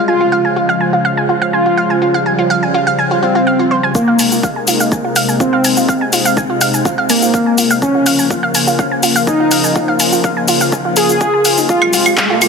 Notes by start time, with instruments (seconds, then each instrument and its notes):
Already playing: analog synth pad G#3 F4
0.08 analog synth pad C#3 F3, analog synth lead F4, synth pluck G#5
0.21 synth pluck F4
0.32 synth pluck F5
0.45 synth pluck G#5
0.56 synth pluck F4
0.69 synth pluck F5
0.81 synth pluck G#5
0.93 synth pluck F4
1.05 synth pluck F5
1.17 synth pluck G#5
1.29 synth pluck F4
1.42 synth pluck F5
1.53 analog synth lead F4, synth pluck G#5
1.66 synth pluck F4
1.77 synth pluck F5
1.90 synth pluck G#5
2.01 analog synth pad G3, synth pluck F4
2.14 synth pluck F5
2.26 synth pluck G#5
2.39 synth pluck F4
2.50 synth pluck F5
2.63 synth pluck G#5
2.74 synth pluck F4
2.87 synth pluck F5
2.99 synth pluck G#5
3.11 synth pluck F4
3.23 analog synth lead C4, synth pluck F4
3.35 synth pluck F4
3.47 synth pluck F5
3.59 synth pluck F4
3.71 synth pluck C5
3.83 synth pluck G#5
3.95 analog synth pad C3 G#3 A#3 D#4, analog synth lead A#3, synth pluck F4, kick, shaker
4.08 synth pluck F5
4.19 synth pluck G#5, open hi-hat, shaker
4.32 synth pluck F4, shaker
4.43 synth pluck F5, kick, shaker
4.56 synth pluck G#5
4.68 synth pluck F4, open hi-hat, shaker
4.80 synth pluck F5, shaker
4.92 synth pluck G#5, kick, shaker
5.05 synth pluck F4
5.16 synth pluck F5, open hi-hat, shaker
5.29 synth pluck G#5, shaker
5.40 analog synth lead C4, synth pluck F4, kick, shaker
5.53 synth pluck F5
5.64 synth pluck G#5, open hi-hat, shaker
5.77 synth pluck F4, shaker
5.89 analog synth pad C4, synth pluck F5, kick, shaker
6.01 synth pluck G#5
6.13 synth pluck F4, open hi-hat, shaker
6.25 synth pluck F5, shaker
6.37 synth pluck G#5, kick, shaker
6.50 synth pluck F4
6.61 synth pluck F5, open hi-hat, shaker
6.74 synth pluck G#5, shaker
6.85 synth pluck F4, kick, shaker
6.98 synth pluck F5
7.10 analog synth lead A#3, synth pluck G#5, open hi-hat, shaker
7.22 synth pluck F4, shaker
7.34 synth pluck F5, kick, shaker
7.46 synth pluck G#5
7.58 synth pluck F4, open hi-hat, shaker
7.71 synth pluck F5, shaker
7.82 analog synth pad C#3 F3 A#3 F4, analog synth lead C#4, synth pluck G#5, kick, shaker
7.95 synth pluck F4
8.06 synth pluck F5, open hi-hat, shaker
8.19 synth pluck G#5, shaker
8.31 synth pluck F4, kick, shaker
8.43 synth pluck F5
8.55 synth pluck G#5, open hi-hat, shaker
8.67 synth pluck F4, shaker
8.79 synth pluck F5, kick, shaker
8.91 synth pluck G#5
9.03 synth pluck F4, open hi-hat, shaker
9.16 synth pluck F5, shaker
9.27 analog synth lead D#4, synth pluck G#5, kick, shaker
9.40 synth pluck F4
9.51 synth pluck F5, open hi-hat, shaker
9.64 synth pluck G#5, shaker
9.76 synth pluck F4, kick, shaker
9.88 synth pluck F5
10.00 synth pluck G#5, open hi-hat, shaker
10.12 synth pluck F4, shaker
10.24 synth pluck F5, kick, shaker
10.37 synth pluck G#5
10.48 synth pluck F4, open hi-hat, shaker
10.61 synth pluck F5, shaker
10.72 synth pluck G#5, kick, shaker
10.85 synth pluck F4
10.96 analog synth lead G#4, synth pluck G#4, open hi-hat, shaker
11.09 synth pluck F4, shaker
11.21 synth pluck F4, kick, shaker
11.34 synth pluck G#5
11.45 synth pluck F5, open hi-hat, shaker
11.57 synth pluck D#4, shaker
11.69 analog synth pad C3 G#3 G4, analog synth lead F4, synth pluck F4, kick, riser, shaker
11.82 synth pluck F5, claves
11.93 synth pluck F4, open hi-hat, shaker
12.06 synth pluck F4, claves, shaker
12.18 synth pluck F5, kick, clap, shaker
12.30 synth pluck F4
12.42 synth pluck F4, open hi-hat, claves, shaker